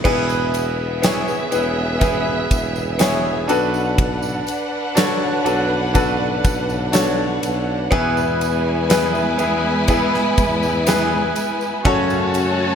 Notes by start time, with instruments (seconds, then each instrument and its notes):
0.04 tuba E1, grand piano B2 B3 E4 G#4 B4, violin section B3 G#4 E5, kick, crash
0.29 tambourine
0.54 ride, tambourine
1.02 grand piano B3 E4 G#4 C#5, snare, ride, tambourine
1.28 tambourine
1.51 tuba E1, grand piano B3 E4 G#4 B4, ride, tambourine
2.00 grand piano B3 E4 G#4 B4, kick, ride, tambourine
2.51 tuba E1, kick, ride, tambourine
2.76 tambourine
2.99 grand piano B3 E4 G#4 C#5, snare, ride, tambourine
3.48 tuba B1, grand piano D4 F#4 A4 B4, violin section D4 B4 F#5, ride, tambourine
3.74 tambourine
3.98 kick, ride
4.22 tambourine
4.47 ride, tambourine
4.95 grand piano D4 F#4 A4 C#5, snare, ride, tambourine
5.44 tuba B1, grand piano D4 F#4 A4 B4, ride, tambourine
5.94 grand piano D4 F#4 A4 B4, kick, ride, tambourine
6.44 tuba B1, kick, ride, tambourine
6.70 tambourine
6.92 grand piano D4 F#4 A4 C#5, snare, ride, tambourine
7.42 tuba B1, ride, tambourine
7.91 tuba E2, grand piano B2 B3 E4 G#4 B4, string section G#3 B3 E4, violin section E4 B4 G#5, kick, ride
8.17 tambourine
8.41 ride, tambourine
8.89 grand piano B3 E4 G#4 B4, snare, ride, tambourine
9.15 tambourine
9.38 tuba E2, grand piano B3 E4 G#4 B4, ride, tambourine
9.88 grand piano B3 E4 G#4 B4, kick, ride, tambourine
10.14 snare
10.38 tuba E2, kick, ride, tambourine
10.63 tambourine
10.87 grand piano B3 E4 G#4 B4, snare, ride, tambourine
11.36 ride, tambourine
11.61 tambourine
11.85 tuba F#2, grand piano C#3 C#4 F#4 A4 C#5, string section A3 C#4 F#4, violin section F#4 C#5 A5, kick, ride
12.10 tambourine
12.34 ride, tambourine